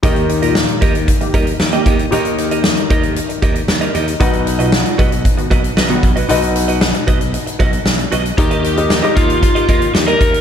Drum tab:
HH |xxxx-xxxxxxx-xxx|xxxx-xxxxxxx-xxx|xxxx-xxxxxxx-xxx|xxxx-xxxxxxx-xxx|
SD |----o-------o---|----o-------o---|----o-------o---|----o-------o---|
BD |o-----o-o-o---o-|------o---o-----|o-----o-o-o---o-|------o---o-----|

HH |xxxx-xxxxxxx-xxx|
SD |----o-------o---|
BD |o-----o-o-o---o-|